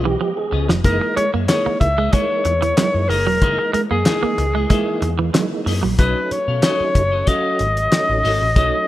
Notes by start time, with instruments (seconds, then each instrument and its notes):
Already playing: picked electric bass B1, tonewheel organ F3 G#3 B3 D#5
0.05 clean electric guitar E3, tonewheel organ G4, muted clean electric guitar stroke
0.20 clean electric guitar F3, muted clean electric guitar stroke
0.37 tonewheel organ G#4
0.52 picked electric bass C#2, clean electric guitar C#4 F4 B4 D#5, muted clean electric guitar stroke
0.69 picked electric bass F1, clean electric guitar F3, muted clean electric guitar stroke, snare
0.84 picked electric bass F#1, tonewheel organ E3 G#3 A#3 D#4, clean electric guitar A#3 E4 G#4 D#5, alto saxophone A#4, kick, closed hi-hat
1.01 muted clean electric guitar stroke
1.16 clean electric guitar G#3, alto saxophone C#5, muted clean electric guitar stroke, muted picked electric bass stroke, closed hi-hat
1.33 picked electric bass F#2, clean electric guitar A#3 E4 G#4 E5
1.48 tonewheel organ E3 G#3 A#3 D#4, clean electric guitar A#3 E4 G#4 D#5, alto saxophone C#5, snare, clap, closed hi-hat
1.66 clean electric guitar A#3, muted picked electric bass stroke
1.80 picked electric bass C#2, alto saxophone E5, muted clean electric guitar stroke, kick, closed hi-hat
1.98 clean electric guitar G#3 A#3 E4 G#4 D#5
2.12 tonewheel organ E3 G#3 A#3 D#4, clean electric guitar G#3 A#3 E4 G#4 E5, alto saxophone C#5, kick, closed hi-hat
2.45 picked electric bass E2, muted clean electric guitar stroke, closed hi-hat
2.62 clean electric guitar E3, muted clean electric guitar stroke, closed hi-hat
2.77 tonewheel organ E3 G#3 A#3 D#4, clean electric guitar F#3, snare, clap, closed hi-hat
2.94 picked electric bass F#2, muted clean electric guitar stroke
3.08 picked electric bass F#1, clean electric guitar A#3 E4 G#4 D#5, alto saxophone A#4, muted clean electric guitar stroke, open hi-hat
3.26 picked electric bass E1, clean electric guitar F#3, muted clean electric guitar stroke
3.41 picked electric bass F#1, tonewheel organ E3 G#3 A#3 D#4, clean electric guitar A#3 E4 G#4 D#5, kick, closed hi-hat
3.58 muted clean electric guitar stroke
3.73 clean electric guitar G#3, alto saxophone A#4, muted clean electric guitar stroke, muted picked electric bass stroke, closed hi-hat
3.91 picked electric bass F#2, clean electric guitar A#3 E4 G#4 D#5, alto saxophone G#4
4.05 tonewheel organ E3 G#3 A#3 D#4, clean electric guitar A#3 E4 G#4 D#5, snare, clap, closed hi-hat
4.23 clean electric guitar A#3, muted picked electric bass stroke
4.38 picked electric bass C#2, muted clean electric guitar stroke, closed hi-hat
4.55 clean electric guitar G#3 A#3 E4 G#4 D#5
4.70 tonewheel organ E3 G#3 A#3 D#4, clean electric guitar G#3 A#3 E4 G#4 E5, kick, closed hi-hat
5.02 picked electric bass E2, muted clean electric guitar stroke, closed hi-hat
5.19 clean electric guitar E3, muted clean electric guitar stroke
5.33 tonewheel organ E3 G#3 A#3 D#4, clean electric guitar F#3, snare, clap, closed hi-hat
5.52 muted clean electric guitar stroke
5.66 picked electric bass F#2, clean electric guitar A#3 E4 G#4 D#5, muted clean electric guitar stroke, open hi-hat
5.83 picked electric bass A#1, clean electric guitar F#3, muted clean electric guitar stroke
5.98 picked electric bass B1, tonewheel organ F#3 A3 C#4 D#4, clean electric guitar C#4 F#4 A4 D#5, alto saxophone B4, kick, closed hi-hat
6.31 alto saxophone C#5, muted clean electric guitar stroke, muted picked electric bass stroke, closed hi-hat
6.48 picked electric bass B2, clean electric guitar C#4 F#4 A4 F5
6.62 tonewheel organ F#3 A3 C#4 D#4, clean electric guitar C#4 F#4 A4 D#5, alto saxophone C#5, snare, clap, closed hi-hat
6.81 muted picked electric bass stroke
6.95 picked electric bass F#1, muted clean electric guitar stroke, kick, closed hi-hat
7.12 clean electric guitar C#4 F#4 A4 D#5
7.27 tonewheel organ F#3 A3 C#4 F#4, clean electric guitar C#4 F#4 A4 F5, alto saxophone D#5, kick, closed hi-hat
7.59 picked electric bass G#1, muted clean electric guitar stroke, closed hi-hat
7.77 muted clean electric guitar stroke, closed hi-hat
7.91 tonewheel organ F#3 A3 C#4 D#4, muted clean electric guitar stroke, snare, clap, closed hi-hat
8.09 picked electric bass A1, muted clean electric guitar stroke
8.24 picked electric bass G#1, clean electric guitar C#4 F#4 A4 D#5, open hi-hat
8.42 picked electric bass A1, muted clean electric guitar stroke
8.56 picked electric bass B1, tonewheel organ F#3 A3 C#4 D#4, clean electric guitar C#4 F#4 A4 D#5, kick, closed hi-hat